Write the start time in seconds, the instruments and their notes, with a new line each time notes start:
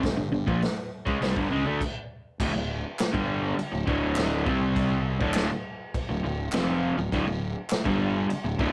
0.03 fingered electric bass G1, overdriven electric guitar G2 D3, kick, snare, open hi-hat
0.17 fingered electric bass G1, overdriven electric guitar G2 D3
0.32 fingered electric bass G1, overdriven electric guitar G2 D3
0.47 fingered electric bass A#1, overdriven electric guitar A#2 F3, kick
0.62 snare, open hi-hat
1.06 fingered electric bass C#2, overdriven electric guitar C#3 G#3, kick
1.21 fingered electric bass C2, overdriven electric guitar C3 G3, snare, open hi-hat
1.35 fingered electric bass G1, overdriven electric guitar G2 D3, kick
1.51 fingered electric bass C#2, overdriven electric guitar C#3 G#3
1.66 fingered electric bass D2, overdriven electric guitar D3 A3
1.81 kick, crash
2.40 fingered electric bass D1, overdriven electric guitar D2 A2, kick, crash
2.54 fingered electric bass D1, overdriven electric guitar D2 A2
2.99 snare, clap, crash
3.13 fingered electric bass G1, overdriven electric guitar G2 D3 G3, kick
3.57 muted overdriven electric guitar stroke, muted fingered electric bass stroke, crash
3.72 fingered electric bass D1, overdriven electric guitar D2 A2
3.86 fingered electric bass D1, overdriven electric guitar D2 A2 D3, kick
4.16 snare, clap, crash
4.46 fingered electric bass C2, overdriven electric guitar C3 G3 C4, kick
4.76 kick, crash
5.20 fingered electric bass D1, overdriven electric guitar D2 A2 D3, kick
5.34 snare, clap, crash
5.94 kick, crash
6.09 fingered electric bass D1, overdriven electric guitar D2 A2
6.24 fingered electric bass D1, overdriven electric guitar D2 A2
6.52 fingered electric bass F1, overdriven electric guitar F2 C3 F3, snare, clap, crash
6.97 fingered electric bass D1, overdriven electric guitar D2 A2
7.12 fingered electric bass D1, overdriven electric guitar D2 A2, kick, crash
7.26 fingered electric bass D1, overdriven electric guitar D2 A2
7.70 snare, clap, crash
7.85 fingered electric bass G1, overdriven electric guitar G2 D3 G3, kick
8.29 muted overdriven electric guitar stroke, muted fingered electric bass stroke, crash
8.44 fingered electric bass D1, overdriven electric guitar D2 A2
8.59 fingered electric bass D1, overdriven electric guitar D2 A2 D3, kick